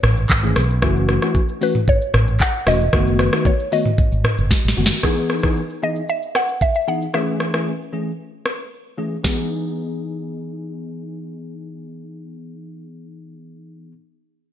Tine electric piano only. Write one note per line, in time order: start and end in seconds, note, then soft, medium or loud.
0.43 0.60 E3 medium
0.43 0.60 A3 medium
0.43 0.60 C#4 medium
0.43 0.60 G#4 medium
0.82 1.19 E3 loud
0.82 1.19 A3 medium
0.82 1.19 C#4 medium
0.82 1.19 F#4 loud
1.22 1.39 E3 medium
1.22 1.39 A3 medium
1.22 1.39 C#4 medium
1.22 1.39 F#4 medium
1.61 1.78 E3 medium
1.61 1.79 A3 medium
1.61 1.79 C#4 medium
1.61 1.79 F#4 medium
2.66 2.84 E3 medium
2.66 2.84 A3 medium
2.66 2.84 C#4 medium
2.66 2.84 F#4 medium
2.93 3.29 D#3 loud
2.93 3.30 A3 medium
2.93 3.30 B3 medium
2.93 3.30 F#4 loud
3.33 3.49 D#3 medium
3.33 3.49 A3 medium
3.33 3.49 B3 medium
3.33 3.50 F#4 medium
3.72 3.89 D#3 medium
3.72 3.89 A3 medium
3.72 3.89 B3 medium
3.72 3.89 F#4 medium
4.77 4.94 D#3 medium
4.77 4.94 A3 medium
4.77 4.94 B3 medium
4.77 4.94 F#4 medium
5.03 5.40 E3 medium
5.03 5.40 B3 medium
5.03 5.40 D#4 medium
5.03 5.40 G#4 loud
5.43 5.60 E3 medium
5.43 5.60 B3 medium
5.43 5.60 D#4 medium
5.43 5.60 G#4 medium
5.82 6.00 E3 medium
5.82 6.00 B3 medium
5.82 6.00 D#4 medium
5.82 6.00 G#4 medium
6.87 7.05 E3 medium
6.87 7.05 B3 medium
6.87 7.05 D#4 medium
6.87 7.05 G#4 medium
7.14 7.50 E3 medium
7.14 7.51 A3 medium
7.14 7.51 C#4 medium
7.14 7.51 G#4 loud
7.54 7.70 E3 medium
7.54 7.70 A3 medium
7.54 7.70 C#4 medium
7.54 7.71 G#4 medium
7.92 8.10 E3 medium
7.92 8.10 A3 medium
7.92 8.10 C#4 medium
7.92 8.10 G#4 medium
8.98 9.15 E3 medium
8.98 9.15 A3 medium
8.98 9.15 C#4 medium
8.98 9.15 G#4 medium
9.24 13.91 E3 medium
9.24 13.91 B3 medium
9.24 13.92 D#4 medium
9.24 13.92 G#4 medium